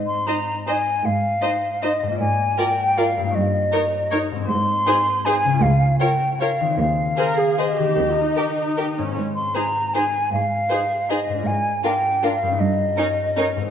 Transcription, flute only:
0.07 0.28 C6 medium
0.27 0.67 A#5 soft
0.67 1.07 G#5 medium
1.05 1.84 F5 medium
1.83 2.20 D#5 soft
2.20 2.60 G#5 medium
2.58 2.99 G5 medium
2.98 3.36 F5 medium
3.35 4.20 D#5 medium
4.48 5.27 C6 medium
5.25 5.64 G#5 medium
5.62 5.99 F5 medium
6.00 6.32 G5 medium
6.34 6.40 G5 soft
6.41 6.79 F5 medium
6.80 7.60 F5 medium
7.59 8.78 D#5 soft
9.35 9.57 C6 soft
9.56 9.88 A#5 soft
9.88 9.94 A#5 soft
9.95 10.32 G#5 soft
10.33 11.12 F5 soft
11.10 11.48 D#5 soft
11.47 11.84 G#5 soft
11.84 12.26 G5 soft
12.24 12.62 F5 medium
12.60 13.56 D#5 medium

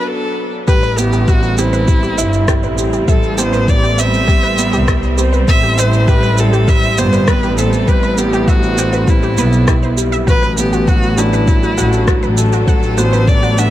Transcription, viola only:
0.01 0.09 B4 medium
0.07 0.53 A4 medium
0.68 0.99 B4 loud
0.98 1.29 G4 loud
1.28 1.60 F#4 loud
1.58 2.78 E4 medium
3.08 3.40 A4 medium
3.39 3.71 C5 loud
3.69 4.01 D5 loud
4.00 5.19 E5 loud
5.49 5.81 E5 loud
5.79 6.10 C5 loud
6.09 6.41 B4 loud
6.40 6.71 A4 loud
6.69 7.00 E5 loud
6.98 7.29 C5 loud
7.27 7.58 B4 loud
7.59 7.90 A4 medium
7.88 8.19 B4 loud
8.18 8.50 G4 loud
8.48 9.11 F#4 loud
9.09 9.98 E4 medium
10.29 10.56 B4 loud
10.59 10.89 G4 loud
10.88 11.20 F#4 loud
11.18 12.38 E4 medium
12.68 12.99 A4 medium
12.98 13.30 C5 loud
13.28 13.60 D5 loud
13.59 13.70 E5 loud

